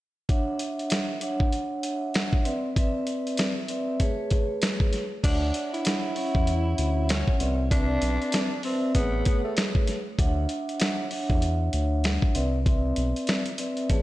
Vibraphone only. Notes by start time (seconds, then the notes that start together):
0.29 D4 C#5 E5 F#5
1.22 D4 C#5 E5 F#5
2.45 C4 B4 D5 E5
2.77 C4 B4 D5 E5
3.69 C4 B4 D5 E5
4.01 A3 G#4 B4 C#5
5.24 D4 C#5 E5 F#5
6.17 C#4 C#5 E5 F#5
7.40 C4 B4 D5 E5
7.72 C4 B4 D5 E5
8.64 C4 B4 D5 E5
8.95 A3 G#4 B4 C#5
10.18 D4 C#5 E5 F#5
11.12 D4 C#5 E5 F#5
12.35 C4 B4 D5 E5
12.66 C4 B4 D5 E5
13.59 C4 B4 D5 E5
13.90 A3 G#4 B4 C#5